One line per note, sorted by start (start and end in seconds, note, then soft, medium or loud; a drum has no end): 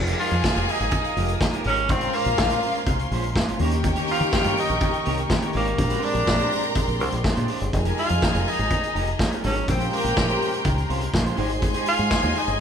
0.00 0.13 F1 loud
0.00 1.13 F3 medium
0.00 1.14 D#4 medium
0.00 1.14 F4 medium
0.00 1.15 G#4 medium
0.00 1.62 G#4 loud
0.00 1.15 A#4 medium
0.00 3.56 A#4 medium
0.00 1.88 F5 medium
0.00 1.62 G#5 loud
0.00 3.56 G#5 medium
0.00 1.88 D#6 medium
0.07 0.17 G#3 medium
0.07 0.18 D#4 medium
0.07 0.19 G4 medium
0.07 0.19 A#4 medium
0.07 closed hi-hat medium
0.18 0.30 G#3 medium
0.18 0.30 D#4 medium
0.18 0.72 F4 loud
0.18 0.31 G4 medium
0.18 0.30 A#4 medium
0.18 open hi-hat medium
0.31 0.41 F2 medium
0.31 muted clean electric guitar stroke medium
0.31 closed hi-hat soft
0.43 muted clean electric guitar stroke soft
0.43 kick loud
0.43 snare loud
0.55 0.65 F1 loud
0.55 0.67 G#3 medium
0.55 0.67 D#4 medium
0.55 0.68 G4 medium
0.55 0.69 A#4 medium
0.55 closed hi-hat soft
0.68 0.80 G#3 medium
0.68 0.80 D#4 medium
0.68 1.42 D#4 loud
0.68 0.80 G4 medium
0.68 0.80 A#4 medium
0.68 open hi-hat medium
0.80 0.89 G#1 medium
0.80 muted clean electric guitar stroke soft
0.80 closed hi-hat soft
0.91 muted clean electric guitar stroke soft
0.91 kick loud
0.91 closed hi-hat medium
1.04 muted clean electric guitar stroke soft
1.04 closed hi-hat soft
1.16 1.34 F1 loud
1.16 1.90 F3 medium
1.16 1.31 G#3 medium
1.16 1.90 D#4 medium
1.16 1.30 D#4 medium
1.16 1.90 F4 medium
1.16 1.29 G4 loud
1.16 1.90 G#4 medium
1.16 1.23 A4 soft
1.16 1.29 A#4 medium
1.16 open hi-hat medium
1.24 1.93 A#4 medium
1.28 muted clean electric guitar stroke soft
1.28 closed hi-hat soft
1.41 muted clean electric guitar stroke soft
1.41 kick loud
1.41 snare loud
1.53 1.64 G#3 medium
1.53 1.65 D#4 medium
1.53 1.65 G4 medium
1.53 1.65 A#4 medium
1.53 closed hi-hat medium
1.64 1.90 G#1 medium
1.64 1.80 G#3 medium
1.64 1.93 C#4 loud
1.64 1.78 D#4 medium
1.64 1.78 G4 medium
1.64 1.77 A#4 medium
1.64 open hi-hat medium
1.76 muted clean electric guitar stroke medium
1.76 closed hi-hat soft
1.88 2.08 A#1 loud
1.88 3.56 A#2 medium
1.88 3.56 G#3 medium
1.88 2.17 C4 loud
1.88 3.58 C#4 medium
1.88 3.57 C#4 medium
1.88 3.33 F4 loud
1.88 3.57 C5 medium
1.88 3.33 F5 loud
1.88 3.58 C6 medium
1.88 muted clean electric guitar stroke medium
1.88 kick loud
1.88 closed hi-hat medium
2.01 2.13 G#3 medium
2.01 2.13 C#4 medium
2.01 2.14 F4 medium
2.01 2.15 C5 medium
2.01 closed hi-hat soft
2.13 2.26 G#3 medium
2.13 2.88 A#3 loud
2.13 2.26 C#4 medium
2.13 2.26 F4 medium
2.13 2.25 C5 medium
2.13 open hi-hat medium
2.25 2.35 A#1 medium
2.25 muted clean electric guitar stroke medium
2.25 closed hi-hat soft
2.38 2.56 A#1 loud
2.38 kick loud
2.38 snare loud
2.50 2.62 G#3 medium
2.50 2.62 C#4 medium
2.50 2.63 F4 medium
2.50 2.64 C5 medium
2.50 closed hi-hat medium
2.63 2.74 G#3 medium
2.63 2.75 C#4 medium
2.63 2.75 F4 medium
2.63 2.74 C5 medium
2.63 open hi-hat medium
2.75 muted clean electric guitar stroke soft
2.75 closed hi-hat soft
2.86 3.05 C2 medium
2.86 muted clean electric guitar stroke soft
2.86 kick loud
2.86 closed hi-hat medium
2.99 muted clean electric guitar stroke medium
2.99 closed hi-hat soft
3.11 3.36 A#1 medium
3.11 3.26 G#3 medium
3.11 3.25 C#4 loud
3.11 3.24 F4 medium
3.11 3.24 C5 loud
3.11 open hi-hat medium
3.23 muted clean electric guitar stroke soft
3.23 closed hi-hat soft
3.36 3.54 G#1 medium
3.36 kick loud
3.36 snare loud
3.48 3.60 G#3 medium
3.48 3.60 C#4 medium
3.48 3.60 F4 medium
3.48 3.60 C5 medium
3.48 closed hi-hat medium
3.58 3.96 D#2 loud
3.58 5.26 D#3 medium
3.58 5.26 A#3 medium
3.58 3.75 A#3 medium
3.58 5.27 C#4 medium
3.58 3.73 D#4 loud
3.58 5.50 G4 loud
3.58 5.27 G4 loud
3.58 3.72 G4 loud
3.58 5.77 A#4 medium
3.58 3.72 C#5 medium
3.58 5.77 D#5 medium
3.58 5.51 G5 loud
3.58 7.69 G5 medium
3.58 5.77 C#6 loud
3.58 open hi-hat medium
3.71 muted clean electric guitar stroke medium
3.71 closed hi-hat soft
3.84 muted clean electric guitar stroke medium
3.84 kick loud
3.84 closed hi-hat medium
3.96 4.06 A#3 medium
3.96 4.07 D#4 medium
3.96 4.08 G4 medium
3.96 4.08 C#5 medium
3.96 closed hi-hat medium
4.07 4.19 A#3 medium
4.07 4.20 D#4 medium
4.07 4.33 F4 loud
4.07 4.20 G4 medium
4.07 4.19 C#5 medium
4.07 open hi-hat medium
4.20 4.30 D#3 loud
4.20 muted clean electric guitar stroke soft
4.20 closed hi-hat soft
4.33 4.57 F4 loud
4.33 kick loud
4.33 snare loud
4.44 4.54 G2 medium
4.44 4.56 A#3 medium
4.44 4.56 D#4 medium
4.44 4.57 G4 medium
4.44 4.57 C#5 medium
4.44 closed hi-hat medium
4.57 4.68 A#3 medium
4.57 4.69 D#4 medium
4.57 5.27 D#4 loud
4.57 4.69 G4 medium
4.57 4.68 C#5 medium
4.57 open hi-hat medium
4.69 4.78 A#1 medium
4.69 muted clean electric guitar stroke medium
4.69 closed hi-hat soft
4.80 muted clean electric guitar stroke soft
4.80 kick loud
4.80 closed hi-hat medium
4.93 muted clean electric guitar stroke soft
4.93 closed hi-hat soft
5.05 5.24 C2 medium
5.05 5.20 A#3 medium
5.05 5.17 D#4 medium
5.05 5.17 G4 loud
5.05 5.16 C#5 loud
5.05 open hi-hat medium
5.17 muted clean electric guitar stroke soft
5.17 closed hi-hat soft
5.29 5.78 D#3 medium
5.29 5.79 A#3 medium
5.29 5.79 C#4 medium
5.29 5.79 G4 medium
5.29 kick loud
5.29 snare loud
5.42 5.54 A#3 medium
5.42 5.54 D#4 medium
5.42 5.54 G4 medium
5.42 5.54 C#5 medium
5.42 closed hi-hat medium
5.53 5.73 G#1 loud
5.53 5.69 A#3 medium
5.53 6.06 A#3 loud
5.53 5.67 D#4 medium
5.53 5.66 G4 medium
5.53 5.66 C#5 medium
5.53 open hi-hat medium
5.65 muted clean electric guitar stroke soft
5.65 closed hi-hat soft
5.77 5.97 A#1 loud
5.77 7.68 A#2 medium
5.77 7.69 G#3 medium
5.77 9.64 G#3 medium
5.77 7.69 C4 medium
5.77 7.69 D4 medium
5.77 7.70 G4 medium
5.77 7.46 A#4 loud
5.77 7.71 D5 medium
5.77 7.46 A#5 loud
5.77 7.71 C6 medium
5.77 muted clean electric guitar stroke soft
5.77 kick loud
5.77 closed hi-hat medium
5.90 6.02 G#3 medium
5.90 6.02 D4 medium
5.90 6.03 G4 medium
5.90 6.03 C5 medium
5.90 closed hi-hat medium
6.02 6.14 G#3 medium
6.02 6.15 D4 medium
6.02 6.77 D4 loud
6.02 6.15 G4 medium
6.02 6.14 C5 medium
6.02 open hi-hat medium
6.15 6.24 A#1 loud
6.15 muted clean electric guitar stroke soft
6.15 closed hi-hat soft
6.27 6.45 A#1 medium
6.27 kick loud
6.27 snare loud
6.39 6.51 G#3 medium
6.39 6.52 D4 medium
6.39 6.53 G4 medium
6.39 6.53 C5 medium
6.39 closed hi-hat medium
6.52 6.63 G#3 medium
6.52 6.64 D4 medium
6.52 6.64 G4 medium
6.52 6.63 C5 medium
6.52 open hi-hat medium
6.63 muted clean electric guitar stroke soft
6.63 closed hi-hat soft
6.75 muted clean electric guitar stroke soft
6.75 kick loud
6.75 closed hi-hat medium
6.88 7.01 A#1 medium
6.88 muted clean electric guitar stroke soft
6.88 closed hi-hat soft
6.99 7.10 C2 loud
6.99 7.14 G#3 medium
6.99 7.11 D4 medium
6.99 7.11 G4 medium
6.99 7.23 C5 medium
6.99 7.10 C5 loud
6.99 open hi-hat medium
7.11 7.22 A#1 medium
7.11 muted clean electric guitar stroke medium
7.11 closed hi-hat soft
7.23 7.70 F5 medium
7.23 muted clean electric guitar stroke soft
7.23 kick loud
7.23 snare medium
7.36 7.46 A#2 medium
7.36 7.48 G#3 medium
7.36 7.48 D4 medium
7.36 7.48 G4 medium
7.36 7.49 C5 medium
7.36 closed hi-hat medium
7.48 7.60 G#3 medium
7.48 7.61 D4 medium
7.48 7.60 G4 medium
7.48 7.60 C5 medium
7.48 open hi-hat medium
7.60 7.70 G1 medium
7.60 muted clean electric guitar stroke soft
7.60 closed hi-hat soft
7.72 7.91 F1 loud
7.72 9.39 F3 medium
7.72 9.40 D#4 medium
7.72 9.40 F4 medium
7.72 9.40 G#4 loud
7.72 9.41 G#4 medium
7.72 9.41 A#4 medium
7.72 9.66 D#5 medium
7.72 9.40 G#5 loud
7.72 9.66 G#5 medium
7.72 9.66 A#5 loud
7.72 muted clean electric guitar stroke soft
7.72 kick medium
7.72 closed hi-hat medium
7.85 7.96 G#3 medium
7.85 7.96 D#4 medium
7.85 7.97 G4 medium
7.85 7.97 A#4 medium
7.85 closed hi-hat medium
7.97 8.09 G#3 medium
7.97 8.09 D#4 medium
7.97 8.50 F4 loud
7.97 8.09 G4 medium
7.97 8.08 A#4 medium
7.97 open hi-hat medium
8.09 8.19 F2 medium
8.09 muted clean electric guitar stroke soft
8.09 closed hi-hat medium
8.22 muted clean electric guitar stroke soft
8.22 kick loud
8.22 snare loud
8.34 8.43 F1 loud
8.34 8.45 G#3 medium
8.34 8.46 D#4 medium
8.34 8.46 G4 medium
8.34 8.47 A#4 medium
8.34 closed hi-hat medium
8.46 8.57 G#3 medium
8.46 8.58 D#4 medium
8.46 9.20 D#4 loud
8.46 8.58 G4 medium
8.46 8.57 A#4 medium
8.46 open hi-hat medium
8.59 8.68 G#1 loud
8.59 muted clean electric guitar stroke soft
8.59 closed hi-hat soft
8.70 muted clean electric guitar stroke soft
8.70 kick loud
8.70 closed hi-hat medium
8.82 muted clean electric guitar stroke soft
8.82 closed hi-hat soft
8.95 9.13 F1 medium
8.95 9.09 G#3 medium
8.95 9.06 D#4 medium
8.95 9.06 G4 loud
8.95 9.05 A#4 medium
8.95 open hi-hat medium
9.07 muted clean electric guitar stroke medium
9.07 closed hi-hat soft
9.19 muted clean electric guitar stroke soft
9.19 kick loud
9.19 snare loud
9.31 9.42 G#3 medium
9.31 9.42 D#4 medium
9.31 9.43 G4 medium
9.31 9.42 A#4 medium
9.31 closed hi-hat soft
9.43 9.62 G#1 medium
9.43 9.67 F3 medium
9.43 9.63 G#3 loud
9.43 9.71 C#4 loud
9.43 9.68 D#4 soft
9.43 9.55 D#4 loud
9.43 9.68 G4 soft
9.43 9.54 G4 loud
9.43 9.68 G#4 medium
9.43 9.54 A#4 loud
9.43 9.68 A#4 medium
9.43 open hi-hat medium
9.55 muted clean electric guitar stroke soft
9.55 closed hi-hat soft
9.66 9.86 A#1 loud
9.66 11.34 A#2 medium
9.66 11.34 G#3 medium
9.66 9.87 C4 loud
9.66 11.36 C#4 medium
9.66 11.35 C#4 medium
9.66 11.11 G4 loud
9.66 11.36 A#4 medium
9.66 11.35 C5 medium
9.66 11.11 G5 loud
9.66 11.36 A#5 medium
9.66 12.60 C6 medium
9.66 muted clean electric guitar stroke medium
9.66 kick loud
9.66 closed hi-hat medium
9.79 9.90 G#3 medium
9.79 9.91 C#4 medium
9.79 9.91 F4 medium
9.79 9.92 C5 medium
9.79 closed hi-hat soft
9.87 9.96 C4 medium
9.91 10.03 G#3 medium
9.91 10.66 A#3 loud
9.91 10.03 C#4 medium
9.91 10.03 F4 medium
9.91 10.03 C5 medium
9.91 open hi-hat medium
10.04 10.13 A#1 medium
10.04 muted clean electric guitar stroke soft
10.04 closed hi-hat medium
10.17 10.35 A#1 medium
10.17 kick loud
10.17 snare loud
10.29 10.39 G#3 medium
10.29 10.40 C#4 medium
10.29 10.40 F4 medium
10.29 10.40 C5 medium
10.29 closed hi-hat medium
10.40 10.52 G#3 medium
10.40 10.52 C#4 medium
10.40 10.52 F4 medium
10.40 10.51 C5 medium
10.40 open hi-hat medium
10.52 muted clean electric guitar stroke medium
10.52 closed hi-hat soft
10.64 10.83 C#2 medium
10.64 muted clean electric guitar stroke soft
10.64 kick loud
10.64 closed hi-hat medium
10.77 muted clean electric guitar stroke medium
10.77 closed hi-hat soft
10.89 11.07 C2 medium
10.89 11.03 G#3 medium
10.89 11.01 C#4 medium
10.89 11.01 F4 medium
10.89 11.00 C5 medium
10.89 open hi-hat medium
11.01 muted clean electric guitar stroke medium
11.01 closed hi-hat soft
11.13 11.31 A#1 loud
11.13 muted clean electric guitar stroke soft
11.13 kick loud
11.13 snare loud
11.25 11.35 G#3 medium
11.25 11.37 C#4 medium
11.25 11.37 F4 medium
11.25 11.36 C5 medium
11.25 closed hi-hat soft
11.36 11.74 G#1 loud
11.36 12.60 G#3 medium
11.36 11.52 G#3 medium
11.36 12.60 G#3 loud
11.36 12.60 D#4 medium
11.36 11.49 D#4 medium
11.36 11.48 G4 medium
11.36 12.60 G#4 loud
11.36 12.60 G#4 medium
11.36 11.47 C5 medium
11.36 12.60 C5 loud
11.36 12.60 D#5 medium
11.36 12.60 G#5 loud
11.36 12.60 G#5 medium
11.36 open hi-hat medium
11.48 muted clean electric guitar stroke soft
11.48 closed hi-hat soft
11.61 muted clean electric guitar stroke soft
11.61 kick loud
11.61 closed hi-hat medium
11.74 11.85 G#3 medium
11.74 11.85 D#4 medium
11.74 11.86 G4 medium
11.74 11.86 C5 medium
11.74 closed hi-hat medium
11.86 11.97 G#3 medium
11.86 11.98 D#4 medium
11.86 12.39 F4 loud
11.86 11.98 G4 medium
11.86 11.97 C5 medium
11.86 open hi-hat medium
11.98 12.08 G#2 loud
11.98 muted clean electric guitar stroke soft
11.98 closed hi-hat soft
12.11 kick loud
12.11 snare loud
12.22 12.32 D#2 loud
12.22 12.33 G#3 medium
12.22 12.34 D#4 medium
12.22 12.35 G4 medium
12.22 12.35 C5 medium
12.22 closed hi-hat soft
12.34 12.46 G#3 medium
12.34 12.46 D#4 medium
12.34 12.60 D#4 loud
12.34 12.47 G4 medium
12.34 12.46 C5 medium
12.34 open hi-hat medium
12.47 12.56 G1 medium
12.47 muted clean electric guitar stroke soft
12.47 closed hi-hat soft